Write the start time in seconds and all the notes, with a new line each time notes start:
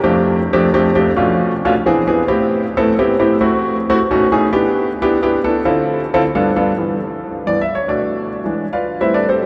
0.04 F2 A3 C4 D4 G4
0.53 F2 A3 C4 D4 G4
0.74 F2 A3 C4 D4 G4
0.95 F2 A3 C4 D4 G4
1.16 B2 A3 C#4 D4 F4
1.65 B2 A3 C#4 D4 F4
1.86 E3 B3 C4 D4 G#4
2.07 E3 B3 C4 D4 G#4
2.28 A2 B3 C4 E4 G4
2.77 A2 B3 C4 E4 A4
2.99 A2 B3 C4 E4 G4
3.19 A2 B3 C4 E4 G4
3.41 A3 C4 E4 F#4
3.90 A3 C4 E4 F#4
4.11 B2 A3 C#4 D#4 F#4
4.32 B2 A3 C#4 D#4 G#4
4.53 B3 D4 E4 G4
5.02 B3 D4 E4 G4
5.22 B3 D4 E4 G4
5.44 B3 D4 E4 A4
5.65 D3 C4 E4 F4 A4
6.14 D3 C4 E4 F4 A4
6.35 G2 B3 D4 F4 A4
6.56 G2 B3 D4 F4 A4
6.76 G2 E3 B3
7.46 G2 E3 B3 D5
7.61 E5
7.75 C#5
7.88 B2 A3 D4 D5
8.44 E3 G#3 D4
8.73 F4 B4 D5 F5
9.00 A2 G3 C4 E4 B4 C5 E5
9.14 D4 A4 B4 D5
9.29 C4 G4 A4 C5
9.43 A2